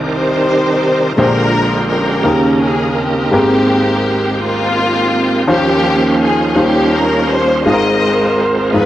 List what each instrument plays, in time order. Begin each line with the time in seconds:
Already playing: upright piano C2 C3 C4 D#4 A#4 D5, tonewheel organ D#3 C4 A#4 D5
0.09 string section D#4 G4 C5
1.17 upright piano A#1 A#2 D3 G#3 G4 C5, tonewheel organ G#3 C#4 G4 A#4 C5, string section D4 F4 A#4
1.24 tonewheel organ D3
1.90 string section C#4 G4 A#4
2.24 upright piano D#2 C#3 D#3 A#3 D#4 A#4, tonewheel organ C#3 A#3 D#4 G#4
2.33 tonewheel organ A#4
2.63 string section G#4
2.98 string section A#3 C4 G4
3.31 upright piano G#1 G#2 G#3 B3 G4 A#4, tonewheel organ G#3 A#3 G4 A#4
3.39 upright piano C4, tonewheel organ C4
4.43 string section A#3 C4 F4
5.47 upright piano D#2 D#3 F3 C#4 F4 C5, tonewheel organ F3 C#4 D#4 F4 C5, string section A#3 C#4 G4
6.23 string section G#4
6.56 upright piano D#2 D#3 G3 C#4 F4 C5, tonewheel organ G3 C#4 D#4 F4 C5, string section G4
6.60 string section A#3 C#4
6.95 string section A#4
7.32 string section C5
7.65 upright piano G#1 G#2 G#3 C4 F4 G#4, tonewheel organ G#3 C4 F4 A#4, string section A#4 C5 D#5
7.74 upright piano A#4
8.73 upright piano G#1 G#2 G#3 D#4 F4 A#4, tonewheel organ F3 B3 D#4 G#4, string section D#4 F4 B4
8.81 upright piano B4